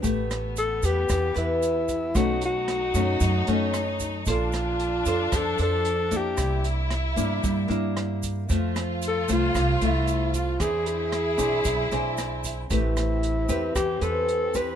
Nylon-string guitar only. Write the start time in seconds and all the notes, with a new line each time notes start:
0.02 A3 G4 B4
0.83 G4 B4
1.09 E3
1.34 G4 B4
2.15 B2 A3 C#4 D#4
2.94 A3 C#4 D#4
3.21 F#3
3.47 A3 C#4 D#4
4.27 A#3 D4 A4 C5
5.06 D4 A4 C5
5.32 F3
5.59 D4 A4 C5
6.11 A#3 D4 E4
6.37 C3
7.16 A#3 D4 E4
7.42 G3
7.68 A#3 D4 E4
8.49 F3 A3 C4
9.28 A3 C4
9.54 C3
9.81 A3 C4
10.59 E3 C4 D4 G#4
11.38 C4 D4 G#4
11.91 C4 D4 G#4
12.70 A3 C4 G4 B4
13.49 C4 G4 B4
13.76 E3
14.01 C4 G4 B4
14.55 C4 G4 B4